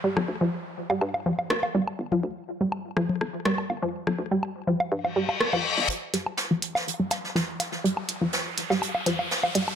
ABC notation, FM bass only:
X:1
M:4/4
L:1/16
Q:1/4=123
K:Fmix
V:1 name="FM bass" clef=bass
G,,, G,,, D,, z4 z G,,4 D,, z G,,,2 | G,,,2 D,, z6 z G,,,4 G,,,2- | G,,, G,,, D,, z4 z G,,3 F,,, z3 G,,, | z16 |
z16 |]